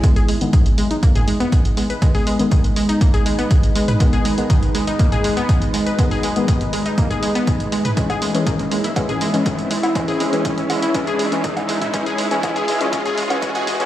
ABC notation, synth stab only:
X:1
M:4/4
L:1/16
Q:1/4=121
K:G#m
V:1 name="Synth stab" clef=bass
[D,G,B,]3 [D,G,B,]12- [D,G,B,] | [D,G,B,]3 [D,G,B,]12- [D,G,B,] | [D,G,B,]3 [D,G,B,]12- [D,G,B,] | [D,G,B,]3 [D,G,B,]12- [D,G,B,] |
[E,G,C]3 [E,G,C]4- [E,G,C] [E,G,C]3 [E,G,C]4- [E,G,C] | [E,G,C]3 [E,G,C]4- [E,G,C] [E,G,C]3 [E,G,C]4- [E,G,C] | [E,G,C]3 [E,G,C] [E,G,C]3 [E,G,C] [E,G,C]3 [E,G,C] [E,G,C]3 [E,G,C] |]